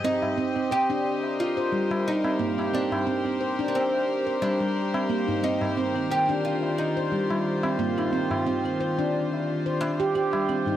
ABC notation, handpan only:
X:1
M:4/4
L:1/16
Q:"Swing 16ths" 1/4=89
K:Gphr
V:1 name="Handpan"
C z C C c D z3 c G, G, z C B, E | C z C C c D z3 c G, G, z C B, E | C z C C c D z3 c G, G, z C B, E | C z C C c D z3 c z G G G, C E |]